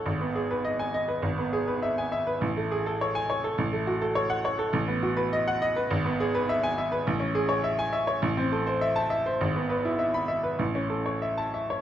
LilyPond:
\new Staff \with { instrumentName = "Grand piano" } { \time 4/4 \key e \major \tempo 4 = 102 gis,,16 b16 gis'16 b'16 dis''16 gis''16 dis''16 b'16 gis,,16 b16 gis'16 b'16 e''16 gis''16 e''16 b'16 | a,,16 a16 gis'16 a'16 cis''16 gis''16 cis''16 a'16 a,,16 a16 fis'16 a'16 cis''16 fis''16 cis''16 a'16 | a,,16 b16 fis'16 b'16 dis''16 fis''16 dis''16 b'16 gis,,16 b16 gis'16 b'16 e''16 gis''16 e''16 b'16 | a,,16 cis'16 gis'16 cis''16 e''16 gis''16 e''16 cis''16 a,,16 c'16 a'16 c''16 e''16 a''16 e''16 c''16 |
gis,,16 b16 b'16 e'16 e''16 b''16 e''16 b'16 a,,16 cis'16 a'16 cis''16 e''16 a''16 e''16 cis''16 | }